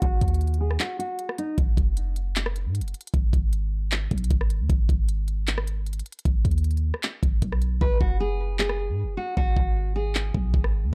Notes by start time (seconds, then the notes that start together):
0.02 G#1 F#4, kick, closed hi-hat
0.21 D#2, kick, closed hi-hat
0.28 closed hi-hat
0.34 closed hi-hat
0.41 closed hi-hat
0.47 closed hi-hat
0.54 closed hi-hat
0.61 G#4
0.71 cross-stick
0.80 F#4, clap, closed hi-hat
0.99 F#4, closed hi-hat
1.19 closed hi-hat
1.29 cross-stick
1.38 D#4, closed hi-hat
1.58 G#1, kick, closed hi-hat
1.77 F#1, kick, closed hi-hat
1.97 closed hi-hat
2.16 closed hi-hat
2.36 clap, closed hi-hat
2.46 cross-stick
2.56 closed hi-hat
2.66 G#2
2.75 closed hi-hat
2.80 F#1, closed hi-hat
2.88 closed hi-hat
2.94 closed hi-hat
3.01 closed hi-hat
3.07 closed hi-hat
3.14 G#1, kick, closed hi-hat
3.33 G#1, kick, closed hi-hat
3.53 closed hi-hat
3.92 clap, closed hi-hat
4.11 B1, kick, closed hi-hat
4.18 closed hi-hat
4.24 closed hi-hat
4.31 G#1, kick, closed hi-hat
4.41 cross-stick
4.50 closed hi-hat
4.60 D#2
4.70 G#1, kick, closed hi-hat
4.89 G#1, kick, closed hi-hat
5.09 closed hi-hat
5.28 closed hi-hat
5.47 clap, closed hi-hat
5.58 cross-stick
5.67 closed hi-hat
5.86 closed hi-hat
5.93 closed hi-hat
5.99 closed hi-hat
6.06 closed hi-hat
6.12 closed hi-hat
6.19 closed hi-hat
6.25 G#1, kick, closed hi-hat
6.45 D#2, kick, closed hi-hat
6.51 closed hi-hat
6.58 closed hi-hat
6.64 closed hi-hat
6.71 closed hi-hat
6.77 closed hi-hat
6.94 cross-stick
7.03 clap, closed hi-hat
7.23 G#1, kick, closed hi-hat
7.42 B1, kick, closed hi-hat
7.52 cross-stick
7.62 closed hi-hat
7.81 G#1 B4, kick
8.01 F#1 F#4, kick
8.20 G#4
8.59 G#4, clap
8.69 cross-stick
8.89 G#2
9.03 F#1
9.17 F#4
9.37 G#1 F#4, kick
9.57 G#1, kick
9.96 G#4
10.15 clap
10.34 B1, kick
10.54 G#1, kick
10.64 cross-stick
10.84 D#2